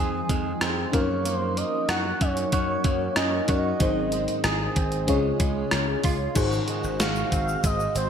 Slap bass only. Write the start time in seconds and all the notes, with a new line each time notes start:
Already playing: F2
0.29 F2
0.61 F2
0.93 F#2
1.89 F#2
2.21 F#2
2.53 F#2
2.84 F#2
3.17 F#2
3.49 F#2
3.80 G#1
4.44 G#1
4.76 G#1
5.08 C#2
5.40 C#2
5.72 C#2
6.04 C#2
6.36 G#1
6.84 G#1
6.99 G#1
7.32 G#1
7.64 G#1
7.95 G#1